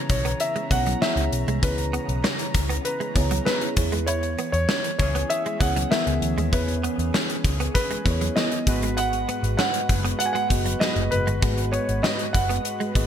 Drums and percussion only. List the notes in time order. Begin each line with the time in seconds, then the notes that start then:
0.09 kick, closed hi-hat
0.25 closed hi-hat
0.40 closed hi-hat
0.56 closed hi-hat
0.71 kick, closed hi-hat
0.86 closed hi-hat
1.02 snare
1.17 closed hi-hat
1.33 closed hi-hat
1.48 closed hi-hat
1.63 kick, closed hi-hat
1.78 closed hi-hat
1.94 closed hi-hat
2.09 closed hi-hat
2.24 snare
2.39 closed hi-hat
2.54 kick, closed hi-hat
2.70 closed hi-hat
2.85 closed hi-hat
3.01 closed hi-hat
3.16 kick, closed hi-hat
3.31 closed hi-hat
3.46 snare
3.61 closed hi-hat
3.77 kick, closed hi-hat
3.92 closed hi-hat
4.07 closed hi-hat
4.23 closed hi-hat
4.38 closed hi-hat
4.54 closed hi-hat
4.69 snare
4.84 closed hi-hat
4.99 kick, closed hi-hat
5.15 closed hi-hat
5.30 closed hi-hat
5.46 closed hi-hat
5.61 kick, closed hi-hat
5.76 closed hi-hat
5.92 snare
6.07 closed hi-hat
6.22 closed hi-hat
6.38 closed hi-hat
6.53 kick, closed hi-hat
6.68 closed hi-hat
6.84 closed hi-hat
6.99 closed hi-hat
7.14 snare
7.30 closed hi-hat
7.44 kick, closed hi-hat
7.60 closed hi-hat
7.75 kick, closed hi-hat
7.91 closed hi-hat
8.06 kick, closed hi-hat
8.21 closed hi-hat
8.37 snare
8.52 closed hi-hat
8.67 kick, closed hi-hat
8.82 closed hi-hat
8.97 closed hi-hat
9.13 closed hi-hat
9.29 closed hi-hat
9.44 closed hi-hat
9.59 snare
9.74 closed hi-hat
9.89 kick, closed hi-hat
10.05 closed hi-hat
10.20 closed hi-hat
10.36 closed hi-hat
10.50 kick, closed hi-hat
10.66 closed hi-hat
10.81 snare
10.96 closed hi-hat
11.12 closed hi-hat
11.27 closed hi-hat
11.42 kick, closed hi-hat
11.58 closed hi-hat
11.74 closed hi-hat
11.89 closed hi-hat
12.04 snare
12.19 closed hi-hat
12.34 kick, closed hi-hat
12.50 closed hi-hat
12.65 closed hi-hat
12.81 closed hi-hat
12.95 kick, closed hi-hat